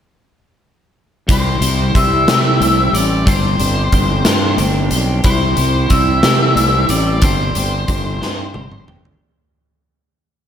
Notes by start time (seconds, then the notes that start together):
1.28 C2 G3 C4 E4 G4 C5, kick, closed hi-hat
1.61 C2 G3 C4 E4 G4, closed hi-hat
1.95 C2 G3 C4 E4 G4 E5, kick, closed hi-hat
2.27 C3 G3 C4 E4 G4, snare, closed hi-hat
2.60 C2 G3 C4 E4 G4, closed hi-hat
2.93 A1 G3 C4 E4 G4 D5, closed hi-hat
3.26 G1 G3 C4 D4 G4 C5, kick, closed hi-hat
3.59 G1 G3 C4 D4 G4, closed hi-hat
3.92 G1 G3 C4 D4 G4, kick, closed hi-hat
4.24 G2 G3 C4 D4 G4, snare, closed hi-hat
4.57 G1 G3 C4 D4 G4, closed hi-hat
4.91 B1 G3 C4 D4 G4, closed hi-hat
5.24 C2 G3 C4 E4 G4 C5, kick, closed hi-hat
5.57 C2 G3 C4 E4 G4, closed hi-hat
5.89 C2 G3 C4 E4 G4 E5, kick, closed hi-hat
6.23 C3 G3 C4 E4 G4, snare, closed hi-hat
6.55 C2 G3 C4 E4 G4, closed hi-hat
6.89 A1 G3 C4 E4 G4 D5, closed hi-hat
7.22 G1 G3 C4 D4 G4 C5, kick, closed hi-hat
7.55 G1 G3 C4 D4 G4, closed hi-hat
7.87 G1 G3 C4 D4 G4, kick, closed hi-hat
8.21 G2 G3 C4 D4 G4, snare
8.54 G1 G3 C4 D4 G4, high tom
8.71 mid tom
8.86 G1 G3 C4 D4 G4, mid tom
9.05 floor tom